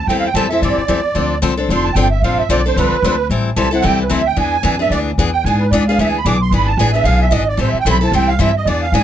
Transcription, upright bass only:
0, 0, Header, 1, 3, 480
1, 0, Start_track
1, 0, Key_signature, 0, "minor"
1, 0, Tempo, 268216
1, 145, Time_signature, 4, 2, 24, 8
1, 16167, End_track
2, 0, Start_track
2, 0, Title_t, "Upright bass"
2, 0, Program_c, 0, 32
2, 132, Note_on_c, 0, 40, 86
2, 598, Note_off_c, 0, 40, 0
2, 609, Note_on_c, 0, 41, 82
2, 1083, Note_off_c, 0, 41, 0
2, 1108, Note_on_c, 0, 43, 92
2, 1363, Note_off_c, 0, 43, 0
2, 1583, Note_on_c, 0, 40, 81
2, 2046, Note_off_c, 0, 40, 0
2, 2057, Note_on_c, 0, 38, 79
2, 2528, Note_off_c, 0, 38, 0
2, 2544, Note_on_c, 0, 36, 77
2, 3012, Note_off_c, 0, 36, 0
2, 3021, Note_on_c, 0, 29, 92
2, 3485, Note_off_c, 0, 29, 0
2, 3496, Note_on_c, 0, 31, 92
2, 3958, Note_off_c, 0, 31, 0
2, 3968, Note_on_c, 0, 33, 81
2, 4235, Note_off_c, 0, 33, 0
2, 4456, Note_on_c, 0, 35, 78
2, 4929, Note_off_c, 0, 35, 0
2, 4944, Note_on_c, 0, 36, 96
2, 5204, Note_off_c, 0, 36, 0
2, 5412, Note_on_c, 0, 38, 97
2, 5888, Note_off_c, 0, 38, 0
2, 5898, Note_on_c, 0, 33, 89
2, 6371, Note_off_c, 0, 33, 0
2, 6378, Note_on_c, 0, 36, 83
2, 6851, Note_off_c, 0, 36, 0
2, 6877, Note_on_c, 0, 36, 94
2, 7337, Note_off_c, 0, 36, 0
2, 7348, Note_on_c, 0, 38, 88
2, 7804, Note_off_c, 0, 38, 0
2, 7815, Note_on_c, 0, 40, 90
2, 8282, Note_off_c, 0, 40, 0
2, 8293, Note_on_c, 0, 41, 90
2, 8761, Note_off_c, 0, 41, 0
2, 8772, Note_on_c, 0, 38, 86
2, 9248, Note_off_c, 0, 38, 0
2, 9267, Note_on_c, 0, 40, 91
2, 9728, Note_off_c, 0, 40, 0
2, 9739, Note_on_c, 0, 44, 95
2, 10211, Note_off_c, 0, 44, 0
2, 10225, Note_on_c, 0, 37, 93
2, 10694, Note_off_c, 0, 37, 0
2, 10707, Note_on_c, 0, 38, 87
2, 11175, Note_off_c, 0, 38, 0
2, 11183, Note_on_c, 0, 35, 94
2, 11640, Note_off_c, 0, 35, 0
2, 11651, Note_on_c, 0, 32, 86
2, 12110, Note_off_c, 0, 32, 0
2, 12121, Note_on_c, 0, 33, 93
2, 12584, Note_off_c, 0, 33, 0
2, 12594, Note_on_c, 0, 35, 96
2, 13056, Note_off_c, 0, 35, 0
2, 13067, Note_on_c, 0, 32, 83
2, 13547, Note_off_c, 0, 32, 0
2, 13558, Note_on_c, 0, 33, 88
2, 13828, Note_off_c, 0, 33, 0
2, 14046, Note_on_c, 0, 35, 89
2, 14521, Note_off_c, 0, 35, 0
2, 14529, Note_on_c, 0, 36, 99
2, 15002, Note_off_c, 0, 36, 0
2, 15010, Note_on_c, 0, 43, 94
2, 15478, Note_off_c, 0, 43, 0
2, 15489, Note_on_c, 0, 40, 83
2, 15956, Note_off_c, 0, 40, 0
2, 15966, Note_on_c, 0, 44, 93
2, 16167, Note_off_c, 0, 44, 0
2, 16167, End_track
3, 0, Start_track
3, 0, Title_t, "Muted upright bass strokes"
3, 1377, Note_on_c, 9, 29, 35
3, 1556, Note_off_c, 9, 29, 0
3, 4251, Note_on_c, 9, 29, 40
3, 4430, Note_off_c, 9, 29, 0
3, 5224, Note_on_c, 9, 29, 38
3, 5403, Note_off_c, 9, 29, 0
3, 13840, Note_on_c, 9, 29, 44
3, 14019, Note_off_c, 9, 29, 0
3, 16167, End_track
0, 0, End_of_file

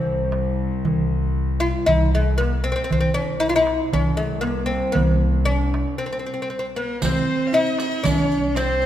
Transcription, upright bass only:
0, 0, Header, 1, 2, 480
1, 0, Start_track
1, 0, Tempo, 514580
1, 781, Time_signature, 4, 2, 24, 8
1, 8264, End_track
2, 0, Start_track
2, 0, Title_t, "Upright bass"
2, 0, Program_c, 0, 32
2, 0, Note_on_c, 0, 36, 84
2, 636, Note_off_c, 0, 36, 0
2, 790, Note_on_c, 0, 36, 80
2, 1598, Note_off_c, 0, 36, 0
2, 1741, Note_on_c, 0, 36, 85
2, 2553, Note_off_c, 0, 36, 0
2, 2719, Note_on_c, 0, 36, 76
2, 3523, Note_off_c, 0, 36, 0
2, 3666, Note_on_c, 0, 36, 82
2, 4476, Note_off_c, 0, 36, 0
2, 4626, Note_on_c, 0, 36, 81
2, 5436, Note_off_c, 0, 36, 0
2, 6549, Note_on_c, 0, 36, 84
2, 6748, Note_off_c, 0, 36, 0
2, 7515, Note_on_c, 0, 36, 90
2, 8264, Note_off_c, 0, 36, 0
2, 8264, End_track
0, 0, End_of_file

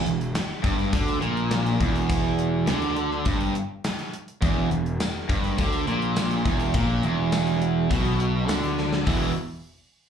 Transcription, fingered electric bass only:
0, 0, Header, 1, 2, 480
1, 0, Start_track
1, 0, Tempo, 581395
1, 1726, Time_signature, 4, 2, 24, 8
1, 8332, End_track
2, 0, Start_track
2, 0, Title_t, "Fingered electric bass"
2, 0, Program_c, 0, 33
2, 43, Note_on_c, 0, 28, 87
2, 267, Note_off_c, 0, 28, 0
2, 530, Note_on_c, 0, 31, 99
2, 751, Note_off_c, 0, 31, 0
2, 770, Note_on_c, 0, 38, 91
2, 991, Note_off_c, 0, 38, 0
2, 1004, Note_on_c, 0, 34, 94
2, 1452, Note_off_c, 0, 34, 0
2, 1494, Note_on_c, 0, 28, 90
2, 2177, Note_off_c, 0, 28, 0
2, 2208, Note_on_c, 0, 38, 105
2, 2654, Note_off_c, 0, 38, 0
2, 2690, Note_on_c, 0, 31, 99
2, 2911, Note_off_c, 0, 31, 0
2, 3654, Note_on_c, 0, 28, 101
2, 3874, Note_off_c, 0, 28, 0
2, 3892, Note_on_c, 0, 28, 86
2, 4113, Note_off_c, 0, 28, 0
2, 4372, Note_on_c, 0, 31, 104
2, 4593, Note_off_c, 0, 31, 0
2, 4616, Note_on_c, 0, 38, 99
2, 4835, Note_off_c, 0, 38, 0
2, 4855, Note_on_c, 0, 34, 99
2, 5298, Note_off_c, 0, 34, 0
2, 5328, Note_on_c, 0, 28, 97
2, 5551, Note_off_c, 0, 28, 0
2, 5568, Note_on_c, 0, 34, 98
2, 5791, Note_off_c, 0, 34, 0
2, 5803, Note_on_c, 0, 28, 98
2, 6492, Note_off_c, 0, 28, 0
2, 6530, Note_on_c, 0, 35, 95
2, 6975, Note_off_c, 0, 35, 0
2, 7008, Note_on_c, 0, 38, 98
2, 7454, Note_off_c, 0, 38, 0
2, 7489, Note_on_c, 0, 28, 99
2, 7711, Note_off_c, 0, 28, 0
2, 8332, End_track
0, 0, End_of_file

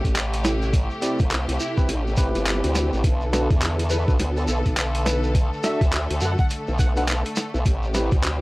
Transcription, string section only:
0, 0, Header, 1, 2, 480
1, 0, Start_track
1, 0, Tempo, 576923
1, 611, Time_signature, 4, 2, 24, 8
1, 6998, End_track
2, 0, Start_track
2, 0, Title_t, "String section"
2, 0, Program_c, 0, 48
2, 0, Note_on_c, 0, 48, 87
2, 0, Note_on_c, 0, 57, 78
2, 0, Note_on_c, 0, 67, 96
2, 2499, Note_off_c, 0, 48, 0
2, 2499, Note_off_c, 0, 57, 0
2, 2499, Note_off_c, 0, 67, 0
2, 2530, Note_on_c, 0, 50, 86
2, 2531, Note_on_c, 0, 59, 80
2, 2531, Note_on_c, 0, 69, 98
2, 4432, Note_off_c, 0, 59, 0
2, 4453, Note_on_c, 0, 57, 79
2, 6337, Note_off_c, 0, 50, 0
2, 6338, Note_off_c, 0, 69, 0
2, 6366, Note_on_c, 0, 67, 98
2, 6367, Note_on_c, 0, 48, 89
2, 6998, Note_off_c, 0, 48, 0
2, 6998, Note_off_c, 0, 57, 0
2, 6998, Note_off_c, 0, 67, 0
2, 6998, End_track
0, 0, End_of_file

